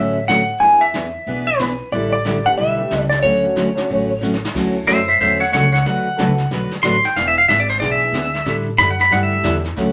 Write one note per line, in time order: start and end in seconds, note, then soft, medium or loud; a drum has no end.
0.00 0.48 A1 medium
0.00 0.17 D3 medium
0.00 0.17 F#3 medium
0.00 0.17 A3 medium
0.00 0.17 C#4 medium
0.00 0.17 F#4 medium
0.00 0.28 E5 loud
0.28 0.39 D3 medium
0.28 0.40 F#3 medium
0.28 0.40 A3 medium
0.28 0.40 C#4 medium
0.28 0.40 F#4 medium
0.28 0.62 F#5 loud
0.28 snare medium
0.28 hi-hat pedal soft
0.60 1.13 E2 medium
0.60 0.82 E3 medium
0.60 0.79 G#3 medium
0.60 0.79 B3 medium
0.60 0.83 B3 medium
0.60 0.80 D4 medium
0.60 0.83 D4 medium
0.60 0.80 E4 medium
0.60 0.83 G#4 medium
0.60 0.82 G#5 medium
0.60 brush sweep soft
0.81 1.49 E5 loud
0.94 1.05 E3 medium
0.94 1.05 B3 medium
0.94 1.06 D4 medium
0.94 1.06 G#4 medium
0.94 snare medium
0.94 hi-hat pedal medium
1.27 1.79 B1 medium
1.27 1.48 E3 medium
1.27 1.48 B3 medium
1.27 1.48 D4 medium
1.27 1.48 G#4 medium
1.27 brush sweep soft
1.47 1.89 B4 medium
1.59 1.71 E3 medium
1.59 1.71 B3 medium
1.59 1.71 D4 medium
1.59 1.71 G#4 medium
1.59 snare medium
1.59 hi-hat pedal medium
1.92 2.45 A1 medium
1.92 2.13 D3 medium
1.92 2.14 G3 medium
1.92 2.13 D4 medium
1.92 2.14 E4 medium
1.92 2.14 A4 medium
1.92 2.11 D5 medium
1.92 brush sweep medium
2.13 2.46 D5 loud
2.25 2.36 D3 medium
2.25 2.36 G3 medium
2.25 2.37 D4 medium
2.25 2.37 E4 medium
2.25 2.37 A4 medium
2.25 snare medium
2.25 hi-hat pedal medium
2.44 2.56 A3 medium
2.44 2.56 B3 medium
2.44 2.57 D4 medium
2.44 2.57 G4 medium
2.44 2.51 F#5 medium
2.57 2.86 B1 medium
2.57 2.78 D3 medium
2.57 2.79 G3 medium
2.57 2.79 D4 medium
2.57 2.79 E4 medium
2.57 2.79 A4 medium
2.57 3.09 E5 medium
2.57 brush sweep medium
2.77 3.21 A3 medium
2.77 3.21 B3 medium
2.77 3.21 D4 medium
2.77 3.21 G4 medium
2.91 3.19 C#2 medium
2.91 3.02 D3 medium
2.91 3.03 G3 medium
2.91 3.02 D4 medium
2.91 3.03 E4 medium
2.91 3.03 A4 medium
2.91 snare medium
2.91 hi-hat pedal medium
3.10 3.22 D5 medium
3.10 snare soft
3.23 3.76 D2 medium
3.23 3.44 D3 medium
3.23 3.44 F#3 medium
3.23 3.44 A3 medium
3.23 3.45 C#4 medium
3.23 3.45 F#4 medium
3.23 4.21 C#5 medium
3.23 brush sweep soft
3.44 3.55 A3 medium
3.44 3.55 C#4 medium
3.44 3.55 D4 medium
3.44 3.56 F#4 medium
3.56 3.67 D3 medium
3.56 3.67 F#3 medium
3.56 3.68 A3 medium
3.56 3.68 C#4 medium
3.56 3.68 F#4 medium
3.56 snare medium
3.56 hi-hat pedal medium
3.75 3.87 A3 medium
3.75 3.87 C#4 medium
3.75 3.88 D4 medium
3.75 3.88 F#4 medium
3.75 snare soft
3.89 4.42 A1 medium
3.89 4.10 D3 medium
3.89 4.10 F#3 medium
3.89 4.10 A3 medium
3.89 4.10 C#4 medium
3.89 4.10 F#4 medium
3.89 brush sweep medium
4.21 4.33 D3 medium
4.21 4.33 F#3 medium
4.21 4.33 A3 medium
4.21 4.33 C#4 medium
4.21 4.33 F#4 medium
4.21 hi-hat pedal medium
4.34 snare medium
4.45 snare medium
4.53 4.86 D2 medium
4.53 4.75 D3 medium
4.53 4.75 F#3 medium
4.53 5.02 A3 medium
4.53 4.75 A3 medium
4.53 5.03 C#4 medium
4.53 4.75 C#4 medium
4.53 5.03 D4 medium
4.53 5.03 E4 medium
4.53 5.03 F#4 medium
4.53 4.76 F#4 medium
4.53 brush sweep medium
4.53 kick medium
4.53 snare soft
4.53 crash medium
4.87 5.19 F#2 medium
4.87 4.98 D3 medium
4.87 4.98 F#3 medium
4.87 4.98 A3 medium
4.87 4.99 C#4 medium
4.87 4.99 F#4 medium
4.87 5.07 C5 medium
4.87 5.07 E5 medium
4.87 snare medium
4.87 hi-hat pedal medium
5.08 5.20 C5 medium
5.08 5.20 E5 medium
5.20 5.52 E2 medium
5.20 5.41 D3 medium
5.20 5.41 F#3 medium
5.20 5.41 A3 medium
5.20 5.41 C#4 medium
5.20 5.41 F#4 medium
5.20 5.39 C5 medium
5.20 5.40 E5 medium
5.20 brush sweep soft
5.20 snare soft
5.40 5.52 C#5 medium
5.40 5.52 F#5 medium
5.52 5.84 C#2 loud
5.52 5.64 D3 medium
5.52 5.64 F#3 medium
5.52 5.64 A3 medium
5.52 5.65 C#4 medium
5.52 5.65 F#4 medium
5.52 5.71 C#5 medium
5.52 5.72 F#5 medium
5.52 snare medium
5.52 hi-hat pedal medium
5.72 5.84 C#5 medium
5.72 5.85 F#5 medium
5.72 snare soft
5.86 6.17 D2 medium
5.86 6.06 D3 medium
5.86 6.06 F#3 medium
5.86 6.06 A3 medium
5.86 6.06 D4 medium
5.86 6.06 F#4 medium
5.86 6.07 B4 medium
5.86 6.49 F#5 medium
5.86 brush sweep soft
5.86 snare soft
6.17 6.50 C#2 loud
6.17 6.30 D3 medium
6.17 6.30 F#3 medium
6.17 6.36 A3 medium
6.17 6.30 A3 medium
6.17 6.36 B3 medium
6.17 6.36 D4 medium
6.17 6.30 D4 medium
6.17 6.36 F#4 medium
6.17 6.30 F#4 medium
6.17 6.36 A4 medium
6.17 6.30 B4 medium
6.17 snare medium
6.17 hi-hat pedal medium
6.38 snare soft
6.51 6.70 B1 medium
6.51 6.71 D3 medium
6.51 6.71 F#3 medium
6.51 6.72 A3 medium
6.51 6.72 D4 medium
6.51 6.72 F#4 medium
6.51 6.72 B4 medium
6.51 brush sweep medium
6.51 snare soft
6.71 snare soft
6.83 7.02 A1 loud
6.83 6.94 D3 medium
6.83 6.95 F#3 medium
6.83 6.95 A3 medium
6.83 6.95 D4 medium
6.83 6.95 F#4 medium
6.83 6.95 B4 medium
6.83 7.04 C6 loud
6.83 snare medium
6.83 hi-hat pedal medium
7.04 7.16 G5 medium
7.04 muted upright bass stroke soft
7.04 snare soft
7.16 7.48 E1 medium
7.16 7.37 E3 medium
7.16 7.37 B3 medium
7.16 7.37 D4 medium
7.16 7.37 G#4 medium
7.16 7.27 F5 medium
7.16 brush sweep soft
7.16 snare soft
7.28 7.38 E5 medium
7.38 7.48 F5 medium
7.48 7.80 G#1 medium
7.48 7.60 E3 medium
7.48 7.60 B3 medium
7.48 7.60 D4 medium
7.48 7.60 G#4 medium
7.48 7.59 E5 medium
7.48 snare medium
7.48 hi-hat pedal medium
7.60 7.69 D5 medium
7.68 7.79 C5 medium
7.68 snare soft
7.80 8.12 B1 medium
7.80 8.02 E3 medium
7.80 8.29 G#3 medium
7.80 8.30 B3 medium
7.80 8.02 B3 medium
7.80 8.30 D4 medium
7.80 8.02 D4 medium
7.80 8.30 E4 medium
7.80 8.30 G#4 medium
7.80 8.03 G#4 medium
7.80 7.91 D5 medium
7.80 brush sweep soft
7.80 snare soft
7.91 8.55 E5 loud
8.12 8.45 D2 loud
8.12 8.25 E3 medium
8.12 8.25 B3 medium
8.12 8.26 D4 medium
8.12 8.26 G#4 medium
8.12 snare medium
8.12 hi-hat pedal medium
8.34 snare soft
8.45 8.78 A2 medium
8.45 8.67 D3 medium
8.45 8.67 G3 medium
8.45 8.67 D4 medium
8.45 8.67 E4 medium
8.45 8.67 A4 medium
8.45 brush sweep soft
8.45 snare soft
8.78 9.10 F#2 medium
8.78 8.90 D3 medium
8.78 8.90 G3 medium
8.78 8.91 D4 medium
8.78 8.91 E4 medium
8.78 8.91 A4 medium
8.78 8.89 B5 loud
8.78 snare medium
8.78 hi-hat pedal medium
8.91 9.01 F#5 medium
8.99 9.12 B5 medium
8.99 snare soft
9.10 9.43 G2 medium
9.10 9.32 D3 medium
9.10 9.60 G3 medium
9.10 9.32 G3 medium
9.10 9.60 A3 medium
9.10 9.60 D4 medium
9.10 9.32 D4 medium
9.10 9.61 E4 medium
9.10 9.33 E4 medium
9.10 9.61 G4 medium
9.10 9.33 A4 medium
9.10 9.23 F#5 medium
9.10 brush sweep medium
9.10 snare soft
9.23 9.54 E5 loud
9.43 9.75 E2 loud
9.43 9.55 D3 medium
9.43 9.55 G3 medium
9.43 9.55 D4 medium
9.43 9.56 E4 medium
9.43 9.56 A4 medium
9.43 snare medium
9.43 hi-hat pedal medium
9.64 snare soft
9.76 9.92 D2 medium
9.76 9.92 D3 medium
9.76 9.92 F#3 medium
9.76 9.92 A3 medium
9.76 9.92 C#4 medium
9.76 9.92 F#4 medium
9.76 brush sweep soft
9.76 snare soft